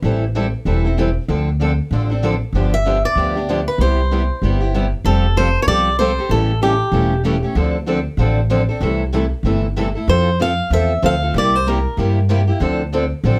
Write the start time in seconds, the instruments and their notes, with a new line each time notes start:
0.02 upright bass A1, steel-string acoustic guitar E3 G3 C4 E4 A4
0.35 steel-string acoustic guitar E3 G3 C4 E4 A4
0.65 upright bass E1, steel-string acoustic guitar E3 G3 C4 E4 A4
0.84 steel-string acoustic guitar C4 E4 A4
0.98 steel-string acoustic guitar E3 G3 C4 E4 A4
1.28 upright bass D2, steel-string acoustic guitar D3 F3 C4 D4 A4
1.61 steel-string acoustic guitar D3 F3 C4 D4 A4
1.91 upright bass A1, steel-string acoustic guitar D3 F3 C4 D4 A4
2.10 steel-string acoustic guitar C4 D4 A4
2.23 steel-string acoustic guitar D3 F3 C4 D4 A4
2.53 upright bass G1, steel-string acoustic guitar D3 F3 B3 D4 G4
2.74 steel-string acoustic guitar E5
2.86 steel-string acoustic guitar D3 F3 B3 D4 G4
3.05 steel-string acoustic guitar D5
3.15 upright bass D2, steel-string acoustic guitar D3 F3 B3 D4 G4
3.36 steel-string acoustic guitar B3 D4 G4
3.49 steel-string acoustic guitar D3 F3 B3 D4 G4
3.68 steel-string acoustic guitar B4
3.78 upright bass C2, steel-string acoustic guitar C3 G3 B3 E4 G4 C5
4.11 steel-string acoustic guitar C3 G3 B3 E4 G4
4.42 upright bass G1, steel-string acoustic guitar C3 G3 B3 E4 G4
4.61 steel-string acoustic guitar B3 E4 G4
4.74 steel-string acoustic guitar C3 G3 B3 E4 G4
5.05 upright bass F1, steel-string acoustic guitar F3 G3 C4 F4 G4 A4
5.37 steel-string acoustic guitar F3 G3 C4 F4 G4 A4 C5
5.62 steel-string acoustic guitar C#5
5.67 upright bass C2, steel-string acoustic guitar F3 G3 C4 F4 G4 A4 D5
5.99 steel-string acoustic guitar F3 G3 C4 F4 G4 A4 C5
6.18 steel-string acoustic guitar C4 G4 A4
6.29 upright bass A1, steel-string acoustic guitar C#3 E3 G3 A3 C#4 E4 G4 A4
6.62 steel-string acoustic guitar C#3 E3 G3 A3 C#4 E4 G4 A4
6.92 upright bass E1, steel-string acoustic guitar C#3 E3 G3 A3 C#4 E4 G4 A4
7.24 steel-string acoustic guitar C#3 E3 G3 A3 C#4 E4 G4 A4
7.43 steel-string acoustic guitar A3 C#4 G4
7.55 upright bass D2, steel-string acoustic guitar D3 F3 C4 D4 A4
7.86 steel-string acoustic guitar D3 F3 C4 D4 A4
8.17 upright bass A1, steel-string acoustic guitar D3 F3 C4 D4 A4
8.50 steel-string acoustic guitar D3 F3 C4 D4 A4
8.69 steel-string acoustic guitar C4 D4 A4
8.81 upright bass C2, steel-string acoustic guitar C3 E3 G3 A3 C4 E4 A4
9.13 steel-string acoustic guitar C3 E3 G3 A3 C4 E4 A4
9.43 upright bass G1, steel-string acoustic guitar C3 E3 G3 A3 C4 E4 A4
9.76 steel-string acoustic guitar C3 E3 G3 A3 C4 E4 A4
9.95 steel-string acoustic guitar A3 E4 A4
10.08 upright bass F2, steel-string acoustic guitar F3 C4 F4 A4 C5
10.40 steel-string acoustic guitar F3 C4 F4 A4 F5
10.70 upright bass E2, steel-string acoustic guitar F3 C4 F4 A4 E5
11.02 upright bass D2, steel-string acoustic guitar F3 C4 F4 A4 F5
11.22 steel-string acoustic guitar C4 F4 A4
11.34 upright bass C2, steel-string acoustic guitar C3 G3 A#3 E4 G4 D5
11.55 steel-string acoustic guitar C5
11.67 steel-string acoustic guitar C3 G3 A#3 E4 G4 A#4
11.97 upright bass G2, steel-string acoustic guitar C3 G3 A#3 E4 G4
12.29 steel-string acoustic guitar C3 G3 A#3 E4 G4
12.47 steel-string acoustic guitar A#3 E4 G4
12.60 upright bass D2, steel-string acoustic guitar D3 F3 C4 D4 A4
12.93 steel-string acoustic guitar D3 F3 C4 D4 A4
13.24 upright bass A1, steel-string acoustic guitar D3 F3 C4 D4 A4